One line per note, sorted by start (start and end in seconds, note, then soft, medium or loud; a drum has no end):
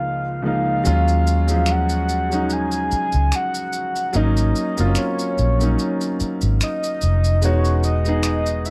0.00 0.21 C#2 medium
0.00 0.21 F3 medium
0.00 0.22 G#3 medium
0.00 0.22 A#3 medium
0.00 0.22 D#4 medium
0.00 0.42 F5 medium
0.42 0.77 C#2 medium
0.42 0.78 F3 medium
0.42 0.78 G#3 medium
0.42 0.78 A#3 medium
0.42 0.79 D#4 medium
0.47 1.73 F5 medium
0.84 2.87 D#2 loud
0.84 1.35 F#3 medium
0.84 1.35 G#3 medium
0.84 1.36 C#4 medium
0.84 1.37 F4 loud
0.84 maracas medium
1.08 maracas soft
1.27 maracas medium
1.47 2.15 F3 medium
1.47 2.13 F#3 medium
1.47 2.14 G#3 medium
1.47 2.14 C#4 medium
1.47 maracas medium
1.66 finger snap medium
1.66 maracas medium
1.71 2.54 F#5 medium
1.89 maracas soft
2.09 maracas soft
2.30 3.62 F#3 medium
2.30 3.63 G#3 medium
2.30 3.63 C#4 medium
2.30 3.64 D#4 medium
2.30 maracas soft
2.50 3.37 G#5 loud
2.50 maracas medium
2.72 maracas soft
2.91 muted fingered electric bass stroke soft
2.91 maracas soft
3.12 3.31 C#2 medium
3.12 maracas soft
3.32 4.15 F#5 loud
3.32 finger snap medium
3.32 maracas medium
3.54 maracas medium
3.73 maracas soft
3.96 maracas soft
4.13 4.51 G#1 loud
4.13 4.64 F#3 medium
4.13 4.65 A#3 medium
4.13 4.65 C#4 medium
4.13 4.66 D#4 medium
4.13 4.99 D#5 loud
4.13 maracas medium
4.37 maracas soft
4.56 maracas soft
4.77 4.95 F#1 medium
4.77 5.42 F#3 medium
4.77 5.43 A#3 medium
4.77 4.84 C4 medium
4.77 5.44 F4 medium
4.77 maracas medium
4.86 5.46 C#4 medium
4.95 6.20 C#5 medium
4.95 finger snap medium
4.95 maracas medium
5.19 maracas soft
5.38 5.75 A#1 medium
5.38 maracas soft
5.59 6.91 F#3 medium
5.59 6.92 A#3 medium
5.59 6.92 C#4 medium
5.59 6.93 D#4 medium
5.59 maracas soft
5.79 maracas medium
6.01 maracas soft
6.20 muted fingered electric bass stroke soft
6.20 maracas soft
6.41 6.59 G#1 loud
6.41 maracas soft
6.61 7.46 D#5 medium
6.61 finger snap medium
6.61 maracas medium
6.83 maracas soft
7.01 7.44 F1 medium
7.01 maracas soft
7.24 maracas soft
7.42 8.70 E1 loud
7.42 7.93 G#3 medium
7.42 7.94 B3 medium
7.42 7.94 D#4 medium
7.42 7.95 F#4 medium
7.42 7.84 C#5 medium
7.42 maracas medium
7.65 maracas soft
7.83 8.67 D#5 loud
7.83 maracas soft
8.05 8.70 G#3 medium
8.05 8.70 B3 medium
8.05 8.70 D#4 medium
8.05 8.70 G#4 medium
8.05 maracas medium
8.23 finger snap medium
8.23 maracas medium
8.46 maracas soft
8.65 8.70 E5 medium
8.65 maracas soft